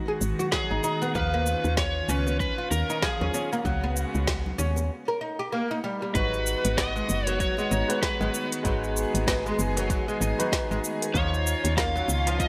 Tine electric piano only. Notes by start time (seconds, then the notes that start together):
6.13 G#3 D#4 F#4
6.17 B4
7.88 G#3 D#4 F#4 B4
8.63 G#3 D#4 F#4 B4
10.38 G#3 D#4 F#4 B4
11.14 D#4 F4 C#5